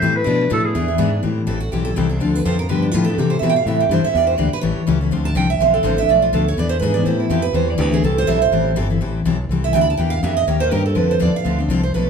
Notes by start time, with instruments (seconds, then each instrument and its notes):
Already playing: steel-string acoustic guitar E4, clarinet C5
0.02 fingered electric bass A2, steel-string acoustic guitar E3 G3 C4 E4 A4
0.16 clarinet B4
0.24 steel-string acoustic guitar B2 F3 A3 D4 A4, fingered electric bass B2
0.50 fingered electric bass A2, steel-string acoustic guitar B2 F3 A3 D4 A4, clarinet A4
0.65 clarinet G#4
0.75 fingered electric bass E2, steel-string acoustic guitar E3 B3 D4 E4 G#4
0.88 steel-string acoustic guitar B3 D4 G#4
0.98 fingered electric bass G#2, steel-string acoustic guitar E3 B3 D4 G#4
1.23 fingered electric bass A2, steel-string acoustic guitar E3 G3 C4 E4 A4
1.47 fingered electric bass A1, steel-string acoustic guitar E3 G3 C4 E4 A4
1.60 steel-string acoustic guitar F#4
1.72 fingered electric bass B1, steel-string acoustic guitar E3 G3 C4 E4 G4 A4
1.85 steel-string acoustic guitar A4
1.96 fingered electric bass C2, steel-string acoustic guitar E3 G3 C4 E4 G4 A4
2.09 steel-string acoustic guitar C4 E4 G#4 A4
2.19 fingered electric bass D2, steel-string acoustic guitar D3 F3 C4 D4 A4
2.35 steel-string acoustic guitar B4
2.45 fingered electric bass F2, steel-string acoustic guitar D3 F3 C4 D4 A4 C5
2.59 steel-string acoustic guitar A#4
2.69 fingered electric bass G2, steel-string acoustic guitar D3 F3 B3 D4 G4 B4
2.82 steel-string acoustic guitar D4
2.91 fingered electric bass A2, steel-string acoustic guitar D3 F3 B3 D4 F4 G4
3.05 steel-string acoustic guitar G4 A4
3.09 steel-string acoustic guitar B3 D4
3.18 fingered electric bass C3, steel-string acoustic guitar C3 E3 G3 C4 E4 G4 A4
3.30 steel-string acoustic guitar C5
3.39 fingered electric bass B2, steel-string acoustic guitar C3 E3 G3 E5
3.43 steel-string acoustic guitar C4 E4 A4
3.50 steel-string acoustic guitar G5
3.56 steel-string acoustic guitar F5
3.66 fingered electric bass A2, steel-string acoustic guitar C3 E3 G3 C4 E4 A4 E5
3.80 steel-string acoustic guitar G4
3.89 fingered electric bass G2, steel-string acoustic guitar C3 E3 G3 C4 E4 A4 C5
4.04 steel-string acoustic guitar G3 C4 E4 A4 E5, muted fingered electric bass stroke
4.15 fingered electric bass E2, steel-string acoustic guitar E3 A#3 D4 G4 D5
4.27 steel-string acoustic guitar C5
4.38 fingered electric bass D2, steel-string acoustic guitar E3 A#3 D4 G4 D5
4.53 steel-string acoustic guitar B4
4.61 fingered electric bass A1, steel-string acoustic guitar E3 G3 C#4 E4 A4 C#5
4.87 fingered electric bass C#2, steel-string acoustic guitar E3 G3 C#4 E4 A4
5.01 steel-string acoustic guitar C#4 E4 A4
5.11 fingered electric bass D2, steel-string acoustic guitar D3 F3 C4 D4 A4
5.25 steel-string acoustic guitar A5
5.35 fingered electric bass C2, steel-string acoustic guitar D3 F3 C4 D4 A4 G5
5.50 steel-string acoustic guitar E5
5.59 fingered electric bass B1, steel-string acoustic guitar D3 F3 C4 D4 A4 F5
5.74 steel-string acoustic guitar A4
5.83 fingered electric bass A1, steel-string acoustic guitar D3 F3 C4 D4 A4 C5
5.97 steel-string acoustic guitar C4 D4 A4 E5
6.08 fingered electric bass B1, steel-string acoustic guitar B2 F3 A3 D4 A4 D5
6.22 steel-string acoustic guitar F4
6.33 fingered electric bass D2, steel-string acoustic guitar B2 F3 A3 D4 A4
6.48 steel-string acoustic guitar C#5
6.57 fingered electric bass E2, steel-string acoustic guitar E3 B3 D4 G#4 D5
6.69 steel-string acoustic guitar C5
6.79 fingered electric bass G#2, steel-string acoustic guitar E3 B3 D4 G#4 B4
6.94 steel-string acoustic guitar B3 D4 G#4 D5
7.05 fingered electric bass A2, steel-string acoustic guitar E3 G3 C4 E4 A4 C5
7.20 steel-string acoustic guitar E4
7.30 fingered electric bass F2, steel-string acoustic guitar E3 G3 C4 E4 G4 A4
7.42 steel-string acoustic guitar B4
7.53 fingered electric bass E2, steel-string acoustic guitar E3 G3 C4 E4 A4 C5
7.70 steel-string acoustic guitar D5
7.78 fingered electric bass D2, steel-string acoustic guitar E3 G3 C4 E4 A4 B4
7.91 steel-string acoustic guitar C4 E4 G#4 A4
8.03 fingered electric bass C2, steel-string acoustic guitar E3 G3 C4 E4 A4
8.18 steel-string acoustic guitar C5
8.27 fingered electric bass B1, steel-string acoustic guitar E3 G3 C4 E4 A4 E5
8.42 steel-string acoustic guitar C5
8.52 fingered electric bass A1, steel-string acoustic guitar E3 G3 C4 E4 A4
8.76 fingered electric bass G1, steel-string acoustic guitar E3 G3 C4 E4 A4
8.90 steel-string acoustic guitar C4 E4 A4
9.01 fingered electric bass A1, steel-string acoustic guitar E3 G3 C4 E4 A4
9.25 fingered electric bass B1, steel-string acoustic guitar E3 G3 C4 E4 A4
9.49 fingered electric bass C2, steel-string acoustic guitar E3 G3 C4 E4 A4
9.64 steel-string acoustic guitar C4 E4 A4 E5
9.73 fingered electric bass D2, steel-string acoustic guitar E3 G3 C4 E4 A4 G5
9.81 steel-string acoustic guitar B5
9.90 steel-string acoustic guitar A5
9.98 fingered electric bass E2, steel-string acoustic guitar E3 A#3 D4 G4 G5
10.10 steel-string acoustic guitar F5
10.23 fingered electric bass F2, steel-string acoustic guitar E3 A#3 D4 G4 E5
10.37 steel-string acoustic guitar D#5
10.47 fingered electric bass D#2, steel-string acoustic guitar D#3 A#3 C#4 G4 A#4 C#5
10.60 steel-string acoustic guitar C#4 G4 A#4 C5
10.71 fingered electric bass G2, steel-string acoustic guitar D#3 A#3 C#4 G4 A#4
10.86 steel-string acoustic guitar A4
10.95 fingered electric bass F2, steel-string acoustic guitar D3 F3 C4 D4 A4 B4
11.11 steel-string acoustic guitar C5
11.19 fingered electric bass E2, steel-string acoustic guitar D3 F3 C4 D4 A4 D5
11.34 steel-string acoustic guitar F5, muted fingered electric bass stroke
11.44 fingered electric bass D2, steel-string acoustic guitar D3 F3 C4 D4 A4
11.59 steel-string acoustic guitar C4 D4 A4
11.69 fingered electric bass C2, steel-string acoustic guitar D3 F3 C4 D4 A4
11.83 steel-string acoustic guitar C5
11.94 fingered electric bass B1, steel-string acoustic guitar B2 F3 A3 D4 A4 B4